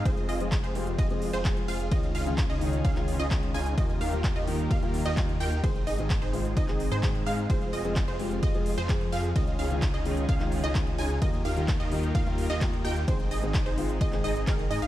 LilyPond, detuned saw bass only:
\new Staff \with { instrumentName = "Detuned saw bass" } { \clef bass \time 4/4 \key f \minor \tempo 4 = 129 f,,8 f,,8. f,,8. f,,8. f,,8. f,,8 | des,8 des,8. des,8. des,8. des,8. des,8 | ees,8 ees,8. ees,8. ees,8. ees,8. ees,8 | aes,,8 aes,,8. aes,,8. aes,,8. aes,8. aes,8 |
f,,8 f,,8. f,,8. f,,8. f,8. f,8 | des,8 des,8. des,8. des,8. des,8. des,8 | ees,8 ees,8. ees,8. ees,8. ees,8. ees,8 | aes,,8 aes,,8. aes,,8. aes,,8 aes,,8 aes,,8 aes,16 aes,,16 | }